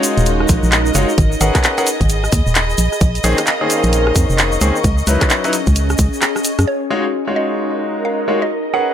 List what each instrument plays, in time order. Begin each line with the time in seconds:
Already playing: grand piano G#3 D#4 F4 F#4 C#5, ambient pad D#4 A#4, violin section D#5
0.03 open hi-hat, shaker
0.18 fm bass D#1, closed hi-hat, shaker
0.26 closed hi-hat, shaker
0.40 cross-stick
0.48 fm bass A#1, kick, open hi-hat, shaker
0.63 fm bass A#1, shaker
0.72 clap, closed hi-hat, shaker
0.86 shaker
0.95 fm bass F#1, grand piano G#3 D#4 F4 F#4 C#5, open hi-hat, shaker
1.09 shaker
1.18 fm bass G#1, ambient pad G#4, kick, closed hi-hat, shaker
1.32 ambient pad D#5, shaker
1.41 fm bass G#1, grand piano C#4 G#4 A#4 B4 F#5, open hi-hat, shaker
1.55 kick, cross-stick, clap, closed hi-hat, shaker
1.64 clap, closed hi-hat, shaker
1.78 grand piano C#4 G#4 A#4 B4 F#5, open hi-hat, shaker
1.87 open hi-hat, shaker
2.01 fm bass G#1, kick, closed hi-hat, shaker
2.09 closed hi-hat, shaker
2.24 cross-stick, shaker
2.32 fm bass D#2, kick, open hi-hat, shaker
2.47 fm bass D#1, shaker
2.55 clap, closed hi-hat, shaker
2.70 shaker
2.78 fm bass A#1, ambient pad A#4, open hi-hat, shaker
2.92 ambient pad F5, cross-stick, shaker
3.01 fm bass A#1, kick, closed hi-hat, shaker
3.15 open hi-hat, shaker
3.24 fm bass A#1, grand piano D#3 A#3 C4 C#4 G#4, open hi-hat, shaker
3.38 cross-stick, closed hi-hat, shaker
3.46 clap, closed hi-hat, shaker
3.61 grand piano D#3 A#3 C4 C#4 G#4
3.70 ambient pad C#6, open hi-hat, shaker
3.83 fm bass A#1, closed hi-hat, shaker
3.93 closed hi-hat, shaker
4.07 cross-stick
4.16 fm bass F2, kick, open hi-hat, shaker
4.30 fm bass F1, shaker
4.38 clap, closed hi-hat, shaker
4.52 shaker
4.61 fm bass C#2, grand piano D#3 A#3 C4 C#4 G#4, open hi-hat, shaker
4.76 shaker
4.84 fm bass C#2, ambient pad C#4, kick, closed hi-hat, shaker
4.98 shaker
5.03 ambient pad G#4
5.07 fm bass C#2, grand piano F#3 C#4 D#4 E4 B4, open hi-hat, shaker
5.21 kick, cross-stick, clap, closed hi-hat, shaker
5.30 clap, closed hi-hat, shaker
5.44 grand piano F#3 C#4 D#4 E4 B4, open hi-hat, shaker
5.53 open hi-hat, shaker
5.67 fm bass C#2, kick, closed hi-hat, shaker
5.76 closed hi-hat, shaker
5.90 cross-stick, shaker
5.98 fm bass C#2, kick, open hi-hat, shaker
6.13 shaker
6.22 cross-stick, clap, closed hi-hat, shaker
6.36 cross-stick, shaker
6.44 open hi-hat, shaker
6.59 fm bass F#2, cross-stick, closed hi-hat, shaker
6.67 ambient pad D#4, synth pluck C#5, violin section D#5
6.90 grand piano G#3 D#4 F4 F#4 C#5
7.10 ambient pad A#4
7.27 grand piano G#3 D#4 F4 F#4 C#5
7.36 synth pluck D#5
8.05 synth pluck F5
8.28 grand piano G#3 D#4 F4 F#4 C#5
8.42 synth pluck D#5
8.51 ambient pad G#4
8.74 grand piano C#4 G#4 A#4 B4 F#5, synth pluck F#5